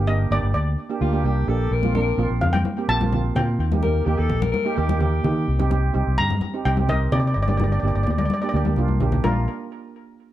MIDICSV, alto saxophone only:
0, 0, Header, 1, 2, 480
1, 0, Start_track
1, 0, Key_signature, -2, "major"
1, 0, Tempo, 470219
1, 1752, Time_signature, 4, 2, 24, 8
1, 10544, End_track
2, 0, Start_track
2, 0, Title_t, "Alto saxophone"
2, 0, Program_c, 0, 65
2, 1033, Note_on_c, 0, 65, 88
2, 1271, Note_on_c, 0, 67, 94
2, 1287, Note_off_c, 0, 65, 0
2, 1518, Note_on_c, 0, 69, 99
2, 1534, Note_off_c, 0, 67, 0
2, 1762, Note_on_c, 0, 70, 116
2, 1777, Note_off_c, 0, 69, 0
2, 1983, Note_off_c, 0, 70, 0
2, 1989, Note_on_c, 0, 70, 96
2, 2328, Note_off_c, 0, 70, 0
2, 3910, Note_on_c, 0, 70, 104
2, 4140, Note_on_c, 0, 67, 98
2, 4156, Note_off_c, 0, 70, 0
2, 4268, Note_on_c, 0, 69, 99
2, 4283, Note_off_c, 0, 67, 0
2, 4507, Note_on_c, 0, 70, 107
2, 4522, Note_off_c, 0, 69, 0
2, 4610, Note_off_c, 0, 70, 0
2, 4616, Note_on_c, 0, 70, 106
2, 4854, Note_on_c, 0, 67, 96
2, 4870, Note_off_c, 0, 70, 0
2, 5090, Note_off_c, 0, 67, 0
2, 5096, Note_on_c, 0, 67, 96
2, 6023, Note_off_c, 0, 67, 0
2, 9424, Note_on_c, 0, 65, 75
2, 9651, Note_off_c, 0, 65, 0
2, 10544, End_track
0, 0, End_of_file